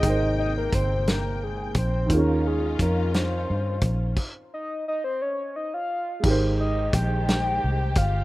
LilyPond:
<<
  \new Staff \with { instrumentName = "Soft synth lead" } { \time 6/8 \key aes \major \tempo 4. = 58 ees''8 ees''16 bes'16 c''8 bes'8 aes'8 c''8 | bes'8 aes'8 bes'8 c''4. | r8 ees''8 ees''16 c''16 des''8 ees''16 f''8. | r8 ees''8 g''4. f''8 | }
  \new Staff \with { instrumentName = "Grand piano" } { \time 6/8 \key aes \major <aes ees' bes' c'' g''>2. | <ees des' ees' f' aes'>2. | r2. | <aes ees' g' bes' c''>2. | }
  \new Staff \with { instrumentName = "String section" } { \time 6/8 \key aes \major <c bes g''>2. | <ees des' f'>2. | r2. | <ees aes g' c''>2. | }
  \new Staff \with { instrumentName = "Fingered electric bass" } { \clef bass \time 6/8 \key aes \major aes,,4 g,,4. bes,,8 | ees,4 f,4 g,8 bes,,8 | r2. | aes,,4 bes,,4 c,8 g,,8 | }
  \new DrumStaff \with { instrumentName = "Drums" } \drummode { \time 6/8 <hh bd>4 <hh bd>8 <hh sn>4 <hh bd>8 | <hh bd>4 <hh bd>8 <hh sn>4 <hh bd>8 | <cymc bd>4. r4. | <cymc bd>4 <hh bd>8 <hh sn>4 <hh bd>8 | }
>>